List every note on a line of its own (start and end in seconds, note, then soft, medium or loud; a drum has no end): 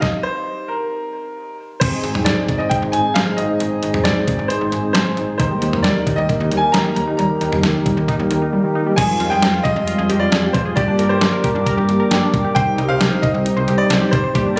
0.01 0.25 D#5 medium
0.01 kick loud
0.01 snare medium
0.23 0.70 C5 loud
0.68 1.54 A#4 medium
1.80 1.91 G#1 loud
1.80 5.36 G#3 medium
1.80 5.36 C4 medium
1.80 5.36 D#4 medium
1.80 5.36 G#4 medium
1.80 2.27 C5 medium
1.80 5.36 C5 medium
1.80 kick loud
1.80 closed hi-hat medium
1.80 crash medium
2.04 2.13 G#1 loud
2.04 closed hi-hat medium
2.15 2.25 G#1 loud
2.15 mid tom medium
2.25 2.36 G#1 loud
2.25 2.60 D5 medium
2.25 snare loud
2.25 closed hi-hat medium
2.49 2.58 G#1 loud
2.49 kick medium
2.49 closed hi-hat medium
2.58 2.69 G#1 medium
2.58 2.71 D#5 medium
2.69 2.75 G5 medium
2.69 kick loud
2.69 closed hi-hat medium
2.82 2.92 G#1 loud
2.92 3.03 G#1 loud
2.92 3.16 G#5 medium
2.92 closed hi-hat medium
3.14 3.25 G#1 loud
3.14 3.38 F5 medium
3.14 snare loud
3.14 closed hi-hat medium
3.37 3.48 G#1 loud
3.37 4.07 D#5 medium
3.37 closed hi-hat medium
3.60 3.70 G#1 loud
3.60 closed hi-hat medium
3.83 3.92 G#1 loud
3.83 closed hi-hat medium
3.94 4.04 G#1 loud
3.94 mid tom loud
4.04 4.15 G#1 loud
4.04 4.51 D5 medium
4.04 snare loud
4.04 closed hi-hat medium
4.28 4.37 G#1 loud
4.28 kick loud
4.28 closed hi-hat medium
4.39 4.48 G#1 medium
4.48 4.92 C5 medium
4.48 closed hi-hat medium
4.61 4.71 G#1 medium
4.72 4.82 G#1 loud
4.72 closed hi-hat medium
4.93 5.04 G#1 loud
4.93 5.25 C5 medium
4.93 snare loud
4.93 closed hi-hat medium
5.17 5.27 G#1 loud
5.17 closed hi-hat medium
5.38 5.49 D#2 loud
5.38 8.94 A#3 medium
5.38 8.94 D#4 medium
5.38 5.46 D#4 loud
5.38 8.94 D#4 medium
5.38 8.94 G4 medium
5.38 8.94 A#4 medium
5.38 5.85 C5 medium
5.38 kick loud
5.38 closed hi-hat medium
5.51 5.57 G3 medium
5.62 5.72 D#2 loud
5.62 5.68 D#3 medium
5.62 closed hi-hat medium
5.73 5.83 D#2 medium
5.73 mid tom loud
5.83 5.94 D#2 loud
5.83 5.91 G3 medium
5.83 6.15 D5 loud
5.83 snare loud
5.83 closed hi-hat medium
5.96 6.02 D#3 medium
6.07 6.16 D#2 loud
6.07 6.13 D#4 medium
6.07 kick medium
6.07 closed hi-hat medium
6.16 6.28 D#2 loud
6.16 6.24 G3 medium
6.16 6.48 D#5 loud
6.29 6.36 D#3 medium
6.29 kick loud
6.29 closed hi-hat medium
6.40 6.50 D#2 loud
6.40 6.47 D#4 medium
6.51 6.61 D#2 loud
6.51 6.58 G3 medium
6.51 closed hi-hat medium
6.57 6.73 G#5 loud
6.72 6.84 D#2 loud
6.72 6.80 D#4 medium
6.72 6.93 A#5 loud
6.72 snare loud
6.72 closed hi-hat medium
6.85 6.92 G3 medium
6.95 7.06 D#2 loud
6.95 7.03 D#3 medium
6.95 7.16 A#5 loud
6.95 closed hi-hat medium
7.08 7.14 D#4 medium
7.17 7.28 D#2 loud
7.17 7.25 G3 loud
7.17 8.48 A#5 loud
7.17 closed hi-hat medium
7.30 7.36 D#3 medium
7.41 7.51 D#2 loud
7.41 7.48 D#4 medium
7.41 closed hi-hat medium
7.52 7.62 D#2 loud
7.52 7.59 G3 medium
7.52 mid tom loud
7.63 7.73 D#2 loud
7.63 7.70 D#3 medium
7.63 snare loud
7.63 closed hi-hat medium
7.86 7.96 D#2 loud
7.86 7.92 G3 medium
7.86 kick medium
7.86 closed hi-hat medium
7.97 8.07 D#2 loud
7.97 8.03 D#3 medium
8.08 8.15 D#4 loud
8.08 kick loud
8.08 closed hi-hat medium
8.19 8.29 D#2 loud
8.19 8.26 G3 medium
8.31 8.40 D#2 loud
8.31 8.37 D#3 medium
8.31 closed hi-hat medium
8.42 8.48 D#4 medium
8.53 8.59 G3 medium
8.64 8.71 D#3 medium
8.75 8.82 D#4 medium
8.86 8.93 G3 medium
8.96 9.07 F2 loud
8.96 10.73 G3 medium
8.96 10.73 G#3 medium
8.96 10.75 F4 medium
8.96 9.04 G#4 loud
8.96 10.75 F5 medium
8.96 9.28 G#5 loud
8.96 10.75 C6 medium
8.96 kick loud
8.96 closed hi-hat medium
8.96 crash loud
9.20 9.30 F2 loud
9.20 9.27 F4 medium
9.20 closed hi-hat medium
9.30 9.41 F2 loud
9.30 9.38 G#4 medium
9.30 9.65 G5 loud
9.42 9.52 F2 loud
9.42 snare loud
9.42 closed hi-hat medium
9.54 9.60 F4 medium
9.63 9.75 F2 loud
9.63 10.22 D#5 loud
9.63 kick loud
9.63 closed hi-hat medium
9.76 9.86 F2 loud
9.87 9.94 F4 medium
9.87 closed hi-hat medium
9.98 10.08 F2 loud
9.98 10.05 G#4 medium
10.09 10.19 F2 loud
10.09 10.16 G4 medium
10.09 closed hi-hat medium
10.20 10.27 F4 medium
10.20 10.55 D5 loud
10.32 10.42 F2 loud
10.32 10.38 G#4 medium
10.32 snare loud
10.32 closed hi-hat medium
10.43 10.50 G4 medium
10.53 10.64 F2 loud
10.53 10.58 C5 medium
10.53 kick loud
10.53 closed hi-hat medium
10.66 10.72 G#4 medium
10.76 10.86 G1 loud
10.76 12.52 G3 medium
10.76 12.52 A#3 medium
10.76 12.52 D4 medium
10.76 12.52 G4 medium
10.76 10.83 G4 loud
10.76 12.54 A#4 medium
10.76 11.11 D5 medium
10.76 12.54 D5 medium
10.76 12.54 D6 medium
10.76 kick loud
10.76 closed hi-hat medium
10.88 10.94 D4 medium
10.99 11.09 G1 loud
10.99 11.05 A#4 medium
10.99 closed hi-hat medium
11.09 11.20 G1 medium
11.09 11.17 G4 medium
11.09 11.44 C5 medium
11.21 11.31 G1 loud
11.21 snare loud
11.21 closed hi-hat medium
11.33 11.39 A#4 medium
11.43 11.54 G1 medium
11.43 11.50 G4 medium
11.43 12.29 A#4 medium
11.43 kick loud
11.43 closed hi-hat medium
11.55 11.65 G1 loud
11.55 11.62 D4 medium
11.66 11.73 A#4 loud
11.66 kick loud
11.66 closed hi-hat medium
11.77 11.87 G1 loud
11.77 11.84 G4 medium
11.89 11.98 G1 loud
11.89 closed hi-hat medium
12.00 12.06 A#4 medium
12.11 12.21 G1 loud
12.11 12.17 G4 medium
12.11 snare loud
12.11 closed hi-hat medium
12.22 12.29 D4 medium
12.34 12.43 G1 medium
12.34 kick loud
12.34 closed hi-hat medium
12.45 12.51 G4 medium
12.55 12.66 C2 loud
12.55 14.31 G3 medium
12.55 14.31 C4 medium
12.55 14.31 D#4 medium
12.55 14.33 D#4 medium
12.55 12.62 C5 loud
12.55 14.33 C5 medium
12.55 12.90 G5 loud
12.55 kick loud
12.55 closed hi-hat medium
12.78 12.88 C2 loud
12.78 12.85 D#4 medium
12.78 closed hi-hat medium
12.88 12.99 C2 loud
12.88 12.96 C5 medium
12.88 13.24 F5 loud
13.01 13.10 C2 loud
13.01 snare loud
13.01 closed hi-hat medium
13.12 13.18 D#4 medium
13.22 13.33 C2 loud
13.22 13.80 D#5 loud
13.22 kick loud
13.22 closed hi-hat medium
13.34 13.44 C2 loud
13.45 13.52 D#4 medium
13.45 closed hi-hat medium
13.57 13.66 C2 loud
13.57 13.63 C5 medium
13.68 13.78 C2 loud
13.68 13.74 G4 medium
13.68 closed hi-hat medium
13.78 13.86 D#4 medium
13.78 14.13 D5 loud
13.90 14.00 C2 loud
13.90 13.97 C5 medium
13.90 snare loud
13.90 closed hi-hat medium
14.01 14.08 G4 medium
14.11 14.22 C2 loud
14.11 14.58 C5 loud
14.11 kick loud
14.11 closed hi-hat medium
14.24 14.30 C5 medium
14.35 14.45 G1 loud
14.35 14.60 G3 medium
14.35 14.60 A#3 medium
14.35 14.60 D4 medium
14.35 14.41 G4 loud
14.35 14.60 G4 medium
14.35 14.60 A#4 medium
14.35 14.60 D5 medium
14.35 14.60 G5 medium
14.35 14.60 D6 medium
14.35 kick loud
14.35 closed hi-hat medium
14.46 14.53 D4 medium
14.56 14.60 D5 medium